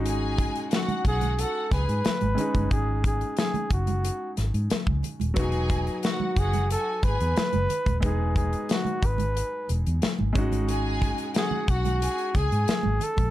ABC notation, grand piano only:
X:1
M:4/4
L:1/8
Q:1/4=90
K:G#phr
V:1 name="Grand piano"
[G,CDF]6- [G,CDF] [G,CDG]- | [G,CDG]6- [G,CDG] z | [F,B,DF]8 | [G,B,DG]6- [G,B,DG] [G,CDF]- |
[G,CDF]6- [G,CDF] z |]